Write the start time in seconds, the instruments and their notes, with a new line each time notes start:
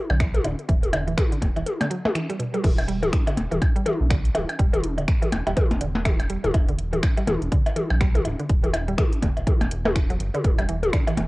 0.10 analog synth bass B1, synth arpeggio sound D3, percussion blips
0.20 synth arpeggio sound E3, finger snap, kick, closed hi-hat
0.34 closed hi-hat, high tom
0.44 analog synth bass D1, synth arpeggio sound D3, closed hi-hat, percussion blips
0.59 closed hi-hat
0.69 analog synth bass E1, synth arpeggio sound E3, kick, closed hi-hat
0.83 closed hi-hat, high tom
0.93 synth arpeggio sound D3, closed hi-hat, percussion blips
1.08 analog synth bass D1, synth arpeggio sound E3, closed hi-hat
1.18 finger snap, kick, closed hi-hat, high tom
1.32 synth arpeggio sound D3, closed hi-hat
1.42 analog synth bass E1, kick, closed hi-hat, percussion blips
1.56 analog synth bass E1, synth arpeggio sound E3, closed hi-hat, percussion blips
1.66 closed hi-hat, high tom
1.81 synth arpeggio sound D3, closed hi-hat, percussion blips
1.91 synth arpeggio sound F#3, closed hi-hat
2.05 high tom, percussion blips
2.15 synth arpeggio sound E3, finger snap, closed hi-hat
2.30 synth arpeggio sound G3, closed hi-hat
2.40 synth arpeggio sound B2, closed hi-hat
2.54 synth arpeggio sound G3, closed hi-hat, high tom
2.64 analog synth bass E1, synth arpeggio sound E3, kick, closed hi-hat, high tom, crash
2.78 closed hi-hat, percussion blips
2.88 synth arpeggio sound G3, closed hi-hat
3.03 analog synth bass D1, synth arpeggio sound E3, closed hi-hat, high tom
3.13 finger snap, kick, closed hi-hat
3.27 synth arpeggio sound D3, closed hi-hat, percussion blips
3.37 analog synth bass E1, closed hi-hat, percussion blips
3.51 analog synth bass E1, synth arpeggio sound E3, closed hi-hat, high tom
3.62 kick, closed hi-hat, percussion blips
3.76 synth arpeggio sound G3, closed hi-hat
3.86 synth arpeggio sound E3, closed hi-hat, high tom, percussion blips
4.00 analog synth bass B1
4.10 synth arpeggio sound D3, finger snap, kick, closed hi-hat
4.25 closed hi-hat
4.35 analog synth bass D1, synth arpeggio sound E3, closed hi-hat, high tom, percussion blips
4.49 closed hi-hat, percussion blips
4.59 analog synth bass E1, synth arpeggio sound G3, kick, closed hi-hat
4.73 synth arpeggio sound E3, closed hi-hat, high tom
4.84 closed hi-hat
4.98 analog synth bass D1, synth arpeggio sound D3, closed hi-hat, percussion blips
5.08 finger snap, kick, closed hi-hat
5.22 synth arpeggio sound E3, closed hi-hat, high tom
5.32 analog synth bass E1, closed hi-hat, percussion blips
5.47 analog synth bass E1, synth arpeggio sound G3, closed hi-hat, percussion blips
5.56 synth arpeggio sound E3, kick, closed hi-hat, high tom
5.71 analog synth bass E1, closed hi-hat, percussion blips
5.81 analog synth bass E1, synth arpeggio sound D3, closed hi-hat
5.95 percussion blips
6.05 synth arpeggio sound E3, finger snap, kick, closed hi-hat, high tom, percussion blips
6.20 closed hi-hat, percussion blips
6.30 synth arpeggio sound G3, closed hi-hat
6.44 analog synth bass E1, synth arpeggio sound E3, closed hi-hat, high tom
6.54 analog synth bass E1, kick, closed hi-hat, percussion blips
6.69 synth arpeggio sound D3, closed hi-hat
6.79 closed hi-hat
6.93 analog synth bass D1, synth arpeggio sound E3, closed hi-hat, high tom
7.03 finger snap, kick, closed hi-hat, percussion blips
7.17 synth arpeggio sound G3, closed hi-hat, percussion blips
7.27 analog synth bass E1, synth arpeggio sound E3, closed hi-hat, high tom, percussion blips
7.42 analog synth bass E1, closed hi-hat
7.52 synth arpeggio sound D3, kick, closed hi-hat
7.66 closed hi-hat, percussion blips
7.76 synth arpeggio sound E3, closed hi-hat, high tom
7.90 analog synth bass B1, percussion blips
8.01 synth arpeggio sound G3, finger snap, kick, closed hi-hat
8.15 synth arpeggio sound E3, closed hi-hat, high tom
8.25 analog synth bass D1, closed hi-hat, percussion blips
8.39 synth arpeggio sound D3, closed hi-hat
8.49 analog synth bass E1, kick, closed hi-hat
8.64 synth arpeggio sound E3, closed hi-hat, high tom
8.74 closed hi-hat, percussion blips
8.88 analog synth bass D1, synth arpeggio sound G3, closed hi-hat
8.98 synth arpeggio sound E3, finger snap, kick, closed hi-hat, high tom
9.13 closed hi-hat
9.22 analog synth bass E1, synth arpeggio sound D3, kick, closed hi-hat, percussion blips
9.37 analog synth bass E1, closed hi-hat, percussion blips
9.47 synth arpeggio sound E3, kick, closed hi-hat, high tom
9.61 analog synth bass E1, closed hi-hat, percussion blips
9.71 analog synth bass E1, closed hi-hat
9.86 synth arpeggio sound B3, high tom, percussion blips
9.96 finger snap, kick, closed hi-hat
10.10 synth arpeggio sound F#3, closed hi-hat
10.20 analog synth bass G1, closed hi-hat
10.34 synth arpeggio sound D3, closed hi-hat, high tom
10.44 analog synth bass E1, kick, closed hi-hat, high tom
10.59 synth arpeggio sound G3, closed hi-hat, percussion blips
10.69 synth arpeggio sound E3, closed hi-hat
10.83 analog synth bass D1, closed hi-hat, high tom
10.93 synth arpeggio sound D3, finger snap, kick, closed hi-hat
11.07 synth arpeggio sound E3, closed hi-hat, percussion blips
11.17 analog synth bass E1, synth arpeggio sound E3, closed hi-hat, percussion blips